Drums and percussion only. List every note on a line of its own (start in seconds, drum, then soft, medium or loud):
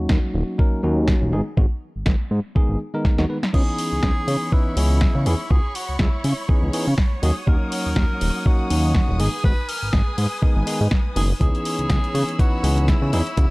0.09 kick loud
0.09 snare loud
0.59 kick loud
1.08 kick loud
1.08 snare loud
1.57 kick loud
2.06 kick loud
2.06 snare loud
2.56 kick loud
3.05 kick loud
3.05 snare medium
3.18 snare medium
3.43 snare medium
3.54 kick loud
3.54 crash medium
3.79 open hi-hat medium
4.03 kick loud
4.03 snare loud
4.28 open hi-hat medium
4.52 kick loud
4.77 open hi-hat loud
5.01 kick loud
5.01 snare loud
5.26 open hi-hat medium
5.51 kick loud
5.75 open hi-hat loud
5.99 kick loud
5.99 snare loud
6.24 open hi-hat medium
6.49 kick loud
6.73 open hi-hat loud
6.98 kick loud
6.98 snare loud
7.23 open hi-hat medium
7.47 kick loud
7.72 open hi-hat loud
7.96 kick loud
7.96 snare loud
8.21 open hi-hat medium
8.46 kick loud
8.70 open hi-hat loud
8.95 kick loud
8.95 snare loud
9.20 open hi-hat medium
9.44 kick loud
9.69 open hi-hat loud
9.93 kick loud
9.93 snare loud
10.18 open hi-hat medium
10.43 kick loud
10.67 open hi-hat loud
10.91 kick loud
10.91 snare loud
11.16 open hi-hat medium
11.41 kick loud
11.41 closed hi-hat medium
11.55 closed hi-hat soft
11.65 open hi-hat loud
11.79 closed hi-hat soft
11.90 kick loud
11.90 snare loud
11.90 closed hi-hat medium
12.04 closed hi-hat soft
12.15 open hi-hat medium
12.29 closed hi-hat soft
12.39 kick loud
12.39 closed hi-hat medium
12.64 open hi-hat loud
12.78 closed hi-hat soft
12.88 kick loud
12.88 snare loud
12.88 closed hi-hat medium
13.13 open hi-hat medium
13.27 closed hi-hat soft
13.37 kick loud
13.37 closed hi-hat medium